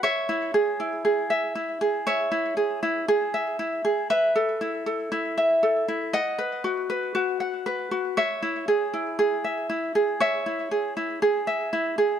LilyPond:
\new Staff \with { instrumentName = "Ukulele" } { \time 4/4 \key cis \minor \tempo 4 = 118 <cis'' e''>8 e'8 gis'8 e'8 gis'8 e''8 e'8 gis'8 | <cis'' e''>8 e'8 gis'8 e'8 gis'8 e''8 e'8 gis'8 | <b' e''>8 a'8 e'8 a'8 e'8 e''8 a'8 e'8 | <dis'' fis''>8 b'8 fis'8 b'8 fis'8 fis''8 b'8 fis'8 |
<cis'' e''>8 e'8 gis'8 e'8 gis'8 e''8 e'8 gis'8 | <cis'' e''>8 e'8 gis'8 e'8 gis'8 e''8 e'8 gis'8 | }